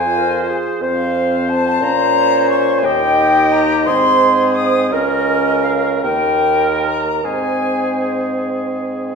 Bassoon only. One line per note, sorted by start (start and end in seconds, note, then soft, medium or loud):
0.00 0.64 F2 medium
0.81 1.77 F2 medium
1.81 2.85 A#2 medium
2.84 3.89 D#2 medium
3.87 4.94 G#2 loud
4.92 6.03 C#2 medium
6.03 7.22 D#2 medium
7.23 9.15 G#2 medium